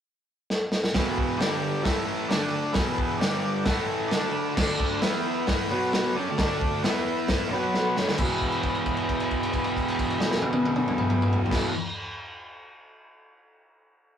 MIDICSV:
0, 0, Header, 1, 4, 480
1, 0, Start_track
1, 0, Tempo, 452148
1, 1002, Time_signature, 4, 2, 24, 8
1, 9168, Tempo, 448430
1, 15099, End_track
2, 0, Start_track
2, 0, Title_t, "Transistor combo organ"
2, 0, Program_c, 0, 18
2, 1020, Note_on_c, 0, 68, 69
2, 1029, Note_on_c, 0, 64, 76
2, 1033, Note_on_c, 0, 71, 77
2, 1465, Note_on_c, 0, 67, 68
2, 1471, Note_on_c, 0, 74, 80
2, 1473, Note_on_c, 0, 62, 78
2, 1489, Note_off_c, 0, 68, 0
2, 1494, Note_off_c, 0, 64, 0
2, 1496, Note_off_c, 0, 71, 0
2, 1942, Note_on_c, 0, 64, 72
2, 1952, Note_off_c, 0, 67, 0
2, 1953, Note_on_c, 0, 69, 65
2, 1955, Note_off_c, 0, 74, 0
2, 1955, Note_on_c, 0, 76, 83
2, 1956, Note_off_c, 0, 62, 0
2, 2405, Note_off_c, 0, 69, 0
2, 2417, Note_on_c, 0, 69, 69
2, 2422, Note_on_c, 0, 62, 79
2, 2422, Note_on_c, 0, 74, 74
2, 2431, Note_off_c, 0, 64, 0
2, 2437, Note_off_c, 0, 76, 0
2, 2885, Note_on_c, 0, 71, 83
2, 2892, Note_on_c, 0, 68, 72
2, 2893, Note_on_c, 0, 64, 76
2, 2909, Note_off_c, 0, 69, 0
2, 2911, Note_off_c, 0, 62, 0
2, 2911, Note_off_c, 0, 74, 0
2, 3363, Note_on_c, 0, 62, 79
2, 3382, Note_on_c, 0, 67, 78
2, 3383, Note_off_c, 0, 71, 0
2, 3387, Note_off_c, 0, 64, 0
2, 3387, Note_off_c, 0, 68, 0
2, 3389, Note_on_c, 0, 74, 85
2, 3612, Note_off_c, 0, 74, 0
2, 3624, Note_on_c, 0, 74, 88
2, 3856, Note_off_c, 0, 74, 0
2, 3863, Note_off_c, 0, 62, 0
2, 3869, Note_on_c, 0, 64, 75
2, 3869, Note_on_c, 0, 69, 69
2, 3869, Note_on_c, 0, 78, 72
2, 3872, Note_off_c, 0, 67, 0
2, 3878, Note_on_c, 0, 76, 88
2, 4099, Note_off_c, 0, 78, 0
2, 4112, Note_on_c, 0, 80, 69
2, 4321, Note_on_c, 0, 62, 79
2, 4323, Note_off_c, 0, 69, 0
2, 4327, Note_on_c, 0, 81, 80
2, 4335, Note_on_c, 0, 74, 83
2, 4336, Note_on_c, 0, 69, 69
2, 4341, Note_off_c, 0, 80, 0
2, 4357, Note_off_c, 0, 64, 0
2, 4362, Note_off_c, 0, 76, 0
2, 4568, Note_off_c, 0, 81, 0
2, 4587, Note_on_c, 0, 83, 69
2, 4819, Note_off_c, 0, 83, 0
2, 5286, Note_off_c, 0, 62, 0
2, 5293, Note_off_c, 0, 69, 0
2, 5293, Note_off_c, 0, 74, 0
2, 5321, Note_on_c, 0, 71, 71
2, 5322, Note_on_c, 0, 76, 80
2, 5324, Note_on_c, 0, 64, 83
2, 5805, Note_off_c, 0, 71, 0
2, 5806, Note_off_c, 0, 76, 0
2, 5807, Note_off_c, 0, 64, 0
2, 6048, Note_on_c, 0, 66, 69
2, 6060, Note_on_c, 0, 59, 67
2, 6061, Note_on_c, 0, 71, 76
2, 6519, Note_on_c, 0, 74, 77
2, 6523, Note_on_c, 0, 69, 70
2, 6530, Note_off_c, 0, 66, 0
2, 6534, Note_on_c, 0, 62, 71
2, 6536, Note_off_c, 0, 59, 0
2, 6536, Note_off_c, 0, 71, 0
2, 7246, Note_off_c, 0, 74, 0
2, 7248, Note_off_c, 0, 69, 0
2, 7253, Note_off_c, 0, 62, 0
2, 7260, Note_on_c, 0, 71, 68
2, 7262, Note_on_c, 0, 76, 78
2, 7270, Note_on_c, 0, 64, 68
2, 7736, Note_off_c, 0, 71, 0
2, 7737, Note_off_c, 0, 76, 0
2, 7741, Note_off_c, 0, 64, 0
2, 7984, Note_on_c, 0, 66, 65
2, 7986, Note_on_c, 0, 71, 73
2, 7991, Note_on_c, 0, 59, 66
2, 8229, Note_on_c, 0, 83, 78
2, 8458, Note_off_c, 0, 66, 0
2, 8458, Note_off_c, 0, 71, 0
2, 8461, Note_off_c, 0, 59, 0
2, 8667, Note_off_c, 0, 83, 0
2, 8691, Note_on_c, 0, 68, 72
2, 8692, Note_on_c, 0, 64, 80
2, 8699, Note_on_c, 0, 71, 87
2, 12145, Note_off_c, 0, 68, 0
2, 12146, Note_off_c, 0, 64, 0
2, 12150, Note_off_c, 0, 71, 0
2, 12217, Note_on_c, 0, 64, 81
2, 12231, Note_on_c, 0, 68, 66
2, 12235, Note_on_c, 0, 71, 84
2, 12431, Note_off_c, 0, 64, 0
2, 12439, Note_off_c, 0, 68, 0
2, 12441, Note_off_c, 0, 71, 0
2, 15099, End_track
3, 0, Start_track
3, 0, Title_t, "Distorted electric guitar"
3, 0, Program_c, 1, 30
3, 1001, Note_on_c, 1, 40, 92
3, 1001, Note_on_c, 1, 47, 106
3, 1022, Note_on_c, 1, 52, 107
3, 1484, Note_off_c, 1, 40, 0
3, 1484, Note_on_c, 1, 43, 97
3, 1494, Note_off_c, 1, 47, 0
3, 1494, Note_on_c, 1, 50, 94
3, 1504, Note_off_c, 1, 52, 0
3, 1504, Note_on_c, 1, 55, 92
3, 1941, Note_off_c, 1, 50, 0
3, 1945, Note_on_c, 1, 45, 89
3, 1948, Note_off_c, 1, 55, 0
3, 1952, Note_on_c, 1, 52, 91
3, 1954, Note_off_c, 1, 43, 0
3, 1966, Note_on_c, 1, 57, 107
3, 2425, Note_off_c, 1, 45, 0
3, 2428, Note_off_c, 1, 52, 0
3, 2435, Note_off_c, 1, 57, 0
3, 2436, Note_on_c, 1, 50, 90
3, 2446, Note_on_c, 1, 57, 81
3, 2458, Note_on_c, 1, 62, 107
3, 2900, Note_on_c, 1, 40, 94
3, 2901, Note_off_c, 1, 50, 0
3, 2905, Note_on_c, 1, 47, 122
3, 2916, Note_off_c, 1, 57, 0
3, 2922, Note_off_c, 1, 62, 0
3, 2925, Note_on_c, 1, 52, 111
3, 3383, Note_off_c, 1, 40, 0
3, 3386, Note_off_c, 1, 47, 0
3, 3396, Note_off_c, 1, 52, 0
3, 3402, Note_on_c, 1, 43, 89
3, 3413, Note_on_c, 1, 50, 91
3, 3419, Note_on_c, 1, 55, 92
3, 3875, Note_off_c, 1, 43, 0
3, 3881, Note_off_c, 1, 50, 0
3, 3884, Note_off_c, 1, 55, 0
3, 3889, Note_on_c, 1, 45, 92
3, 3903, Note_on_c, 1, 52, 100
3, 3916, Note_on_c, 1, 57, 108
3, 4360, Note_off_c, 1, 45, 0
3, 4367, Note_off_c, 1, 52, 0
3, 4369, Note_off_c, 1, 57, 0
3, 4371, Note_on_c, 1, 50, 107
3, 4382, Note_on_c, 1, 57, 97
3, 4390, Note_on_c, 1, 62, 108
3, 4825, Note_off_c, 1, 50, 0
3, 4837, Note_off_c, 1, 57, 0
3, 4838, Note_on_c, 1, 50, 90
3, 4844, Note_off_c, 1, 62, 0
3, 4849, Note_on_c, 1, 57, 89
3, 4857, Note_on_c, 1, 62, 109
3, 5316, Note_off_c, 1, 50, 0
3, 5322, Note_off_c, 1, 57, 0
3, 5325, Note_off_c, 1, 62, 0
3, 5327, Note_on_c, 1, 52, 107
3, 5342, Note_on_c, 1, 59, 112
3, 5345, Note_on_c, 1, 64, 103
3, 5801, Note_off_c, 1, 52, 0
3, 5809, Note_off_c, 1, 59, 0
3, 5810, Note_off_c, 1, 64, 0
3, 5817, Note_on_c, 1, 52, 92
3, 5826, Note_on_c, 1, 59, 108
3, 5840, Note_on_c, 1, 64, 95
3, 6046, Note_off_c, 1, 52, 0
3, 6050, Note_off_c, 1, 59, 0
3, 6054, Note_on_c, 1, 47, 87
3, 6058, Note_off_c, 1, 64, 0
3, 6067, Note_on_c, 1, 54, 96
3, 6072, Note_on_c, 1, 59, 106
3, 6525, Note_off_c, 1, 47, 0
3, 6532, Note_off_c, 1, 54, 0
3, 6535, Note_off_c, 1, 59, 0
3, 6543, Note_on_c, 1, 54, 97
3, 6555, Note_on_c, 1, 61, 114
3, 6650, Note_off_c, 1, 54, 0
3, 6656, Note_off_c, 1, 61, 0
3, 6679, Note_on_c, 1, 50, 82
3, 6685, Note_on_c, 1, 57, 97
3, 6778, Note_off_c, 1, 50, 0
3, 6781, Note_off_c, 1, 57, 0
3, 6789, Note_on_c, 1, 50, 94
3, 6799, Note_on_c, 1, 57, 93
3, 6809, Note_on_c, 1, 62, 112
3, 7253, Note_off_c, 1, 50, 0
3, 7258, Note_off_c, 1, 57, 0
3, 7261, Note_on_c, 1, 52, 104
3, 7263, Note_off_c, 1, 62, 0
3, 7280, Note_on_c, 1, 59, 88
3, 7283, Note_on_c, 1, 64, 96
3, 7726, Note_off_c, 1, 52, 0
3, 7734, Note_off_c, 1, 59, 0
3, 7738, Note_on_c, 1, 52, 93
3, 7741, Note_off_c, 1, 64, 0
3, 7747, Note_on_c, 1, 59, 99
3, 7758, Note_on_c, 1, 64, 105
3, 7984, Note_off_c, 1, 52, 0
3, 7984, Note_on_c, 1, 47, 83
3, 7985, Note_off_c, 1, 59, 0
3, 7985, Note_on_c, 1, 54, 100
3, 8005, Note_off_c, 1, 64, 0
3, 8005, Note_on_c, 1, 59, 113
3, 8450, Note_off_c, 1, 47, 0
3, 8451, Note_off_c, 1, 54, 0
3, 8461, Note_off_c, 1, 59, 0
3, 8466, Note_on_c, 1, 54, 97
3, 8479, Note_on_c, 1, 61, 112
3, 8569, Note_off_c, 1, 54, 0
3, 8573, Note_on_c, 1, 50, 83
3, 8578, Note_off_c, 1, 61, 0
3, 8588, Note_on_c, 1, 57, 80
3, 8682, Note_on_c, 1, 40, 92
3, 8685, Note_off_c, 1, 50, 0
3, 8692, Note_off_c, 1, 57, 0
3, 8709, Note_on_c, 1, 47, 103
3, 8728, Note_on_c, 1, 52, 100
3, 12227, Note_off_c, 1, 40, 0
3, 12231, Note_on_c, 1, 40, 93
3, 12250, Note_off_c, 1, 47, 0
3, 12254, Note_on_c, 1, 47, 98
3, 12279, Note_off_c, 1, 52, 0
3, 12283, Note_on_c, 1, 52, 90
3, 12454, Note_off_c, 1, 40, 0
3, 12466, Note_off_c, 1, 47, 0
3, 12480, Note_off_c, 1, 52, 0
3, 15099, End_track
4, 0, Start_track
4, 0, Title_t, "Drums"
4, 533, Note_on_c, 9, 38, 70
4, 639, Note_off_c, 9, 38, 0
4, 761, Note_on_c, 9, 38, 85
4, 867, Note_off_c, 9, 38, 0
4, 889, Note_on_c, 9, 38, 103
4, 995, Note_off_c, 9, 38, 0
4, 1002, Note_on_c, 9, 46, 69
4, 1003, Note_on_c, 9, 38, 127
4, 1009, Note_on_c, 9, 36, 122
4, 1108, Note_off_c, 9, 46, 0
4, 1109, Note_off_c, 9, 38, 0
4, 1115, Note_off_c, 9, 36, 0
4, 1252, Note_on_c, 9, 36, 86
4, 1358, Note_off_c, 9, 36, 0
4, 1493, Note_on_c, 9, 46, 63
4, 1494, Note_on_c, 9, 38, 122
4, 1599, Note_off_c, 9, 46, 0
4, 1600, Note_off_c, 9, 38, 0
4, 1967, Note_on_c, 9, 46, 68
4, 1968, Note_on_c, 9, 38, 114
4, 1969, Note_on_c, 9, 36, 114
4, 2073, Note_off_c, 9, 46, 0
4, 2074, Note_off_c, 9, 38, 0
4, 2075, Note_off_c, 9, 36, 0
4, 2448, Note_on_c, 9, 46, 67
4, 2449, Note_on_c, 9, 38, 111
4, 2554, Note_off_c, 9, 46, 0
4, 2555, Note_off_c, 9, 38, 0
4, 2911, Note_on_c, 9, 46, 69
4, 2912, Note_on_c, 9, 38, 127
4, 2924, Note_on_c, 9, 36, 127
4, 3017, Note_off_c, 9, 46, 0
4, 3018, Note_off_c, 9, 38, 0
4, 3030, Note_off_c, 9, 36, 0
4, 3166, Note_on_c, 9, 36, 79
4, 3272, Note_off_c, 9, 36, 0
4, 3411, Note_on_c, 9, 46, 57
4, 3412, Note_on_c, 9, 38, 112
4, 3517, Note_off_c, 9, 46, 0
4, 3518, Note_off_c, 9, 38, 0
4, 3880, Note_on_c, 9, 46, 60
4, 3881, Note_on_c, 9, 38, 110
4, 3886, Note_on_c, 9, 36, 118
4, 3987, Note_off_c, 9, 46, 0
4, 3988, Note_off_c, 9, 38, 0
4, 3992, Note_off_c, 9, 36, 0
4, 4367, Note_on_c, 9, 46, 56
4, 4368, Note_on_c, 9, 38, 113
4, 4473, Note_off_c, 9, 46, 0
4, 4474, Note_off_c, 9, 38, 0
4, 4852, Note_on_c, 9, 49, 121
4, 4853, Note_on_c, 9, 38, 127
4, 4854, Note_on_c, 9, 36, 127
4, 4958, Note_off_c, 9, 49, 0
4, 4959, Note_off_c, 9, 38, 0
4, 4960, Note_off_c, 9, 36, 0
4, 5092, Note_on_c, 9, 36, 84
4, 5198, Note_off_c, 9, 36, 0
4, 5328, Note_on_c, 9, 46, 63
4, 5330, Note_on_c, 9, 38, 111
4, 5435, Note_off_c, 9, 46, 0
4, 5436, Note_off_c, 9, 38, 0
4, 5809, Note_on_c, 9, 46, 73
4, 5810, Note_on_c, 9, 38, 123
4, 5819, Note_on_c, 9, 36, 117
4, 5915, Note_off_c, 9, 46, 0
4, 5916, Note_off_c, 9, 38, 0
4, 5925, Note_off_c, 9, 36, 0
4, 6297, Note_on_c, 9, 46, 70
4, 6298, Note_on_c, 9, 38, 107
4, 6403, Note_off_c, 9, 46, 0
4, 6404, Note_off_c, 9, 38, 0
4, 6773, Note_on_c, 9, 46, 74
4, 6774, Note_on_c, 9, 38, 127
4, 6780, Note_on_c, 9, 36, 125
4, 6879, Note_off_c, 9, 46, 0
4, 6880, Note_off_c, 9, 38, 0
4, 6887, Note_off_c, 9, 36, 0
4, 7021, Note_on_c, 9, 36, 91
4, 7127, Note_off_c, 9, 36, 0
4, 7262, Note_on_c, 9, 46, 62
4, 7263, Note_on_c, 9, 38, 108
4, 7369, Note_off_c, 9, 46, 0
4, 7370, Note_off_c, 9, 38, 0
4, 7732, Note_on_c, 9, 46, 62
4, 7733, Note_on_c, 9, 38, 117
4, 7740, Note_on_c, 9, 36, 114
4, 7838, Note_off_c, 9, 46, 0
4, 7839, Note_off_c, 9, 38, 0
4, 7846, Note_off_c, 9, 36, 0
4, 8218, Note_on_c, 9, 38, 65
4, 8324, Note_off_c, 9, 38, 0
4, 8455, Note_on_c, 9, 38, 82
4, 8562, Note_off_c, 9, 38, 0
4, 8578, Note_on_c, 9, 38, 96
4, 8681, Note_on_c, 9, 49, 106
4, 8684, Note_off_c, 9, 38, 0
4, 8692, Note_on_c, 9, 36, 122
4, 8787, Note_off_c, 9, 49, 0
4, 8798, Note_off_c, 9, 36, 0
4, 8934, Note_on_c, 9, 36, 68
4, 8937, Note_on_c, 9, 49, 48
4, 9040, Note_off_c, 9, 36, 0
4, 9044, Note_off_c, 9, 49, 0
4, 9044, Note_on_c, 9, 57, 47
4, 9151, Note_off_c, 9, 57, 0
4, 9161, Note_on_c, 9, 49, 52
4, 9168, Note_on_c, 9, 36, 68
4, 9268, Note_off_c, 9, 49, 0
4, 9275, Note_off_c, 9, 36, 0
4, 9288, Note_on_c, 9, 57, 44
4, 9395, Note_off_c, 9, 57, 0
4, 9406, Note_on_c, 9, 49, 51
4, 9410, Note_on_c, 9, 36, 70
4, 9513, Note_off_c, 9, 49, 0
4, 9517, Note_off_c, 9, 36, 0
4, 9521, Note_on_c, 9, 57, 47
4, 9628, Note_off_c, 9, 57, 0
4, 9654, Note_on_c, 9, 36, 62
4, 9654, Note_on_c, 9, 49, 51
4, 9761, Note_off_c, 9, 36, 0
4, 9761, Note_off_c, 9, 49, 0
4, 9772, Note_on_c, 9, 57, 55
4, 9879, Note_off_c, 9, 57, 0
4, 9887, Note_on_c, 9, 49, 45
4, 9895, Note_on_c, 9, 36, 66
4, 9994, Note_off_c, 9, 49, 0
4, 10002, Note_off_c, 9, 36, 0
4, 10018, Note_on_c, 9, 57, 56
4, 10125, Note_off_c, 9, 57, 0
4, 10127, Note_on_c, 9, 49, 54
4, 10133, Note_on_c, 9, 36, 67
4, 10234, Note_off_c, 9, 49, 0
4, 10240, Note_off_c, 9, 36, 0
4, 10243, Note_on_c, 9, 57, 49
4, 10350, Note_off_c, 9, 57, 0
4, 10378, Note_on_c, 9, 36, 67
4, 10384, Note_on_c, 9, 49, 48
4, 10485, Note_off_c, 9, 36, 0
4, 10491, Note_off_c, 9, 49, 0
4, 10501, Note_on_c, 9, 57, 57
4, 10608, Note_off_c, 9, 57, 0
4, 10616, Note_on_c, 9, 49, 60
4, 10618, Note_on_c, 9, 36, 76
4, 10723, Note_off_c, 9, 49, 0
4, 10726, Note_off_c, 9, 36, 0
4, 10737, Note_on_c, 9, 57, 50
4, 10844, Note_off_c, 9, 57, 0
4, 10847, Note_on_c, 9, 38, 96
4, 10954, Note_off_c, 9, 38, 0
4, 10965, Note_on_c, 9, 38, 102
4, 11072, Note_off_c, 9, 38, 0
4, 11078, Note_on_c, 9, 48, 88
4, 11185, Note_off_c, 9, 48, 0
4, 11194, Note_on_c, 9, 48, 102
4, 11301, Note_off_c, 9, 48, 0
4, 11329, Note_on_c, 9, 48, 97
4, 11436, Note_off_c, 9, 48, 0
4, 11441, Note_on_c, 9, 47, 100
4, 11548, Note_off_c, 9, 47, 0
4, 11569, Note_on_c, 9, 47, 102
4, 11676, Note_off_c, 9, 47, 0
4, 11679, Note_on_c, 9, 45, 104
4, 11786, Note_off_c, 9, 45, 0
4, 11806, Note_on_c, 9, 45, 109
4, 11913, Note_off_c, 9, 45, 0
4, 11937, Note_on_c, 9, 45, 114
4, 12044, Note_off_c, 9, 45, 0
4, 12049, Note_on_c, 9, 43, 109
4, 12157, Note_off_c, 9, 43, 0
4, 12189, Note_on_c, 9, 43, 108
4, 12249, Note_on_c, 9, 36, 108
4, 12258, Note_on_c, 9, 49, 108
4, 12259, Note_on_c, 9, 38, 92
4, 12296, Note_off_c, 9, 43, 0
4, 12356, Note_off_c, 9, 36, 0
4, 12365, Note_off_c, 9, 49, 0
4, 12366, Note_off_c, 9, 38, 0
4, 15099, End_track
0, 0, End_of_file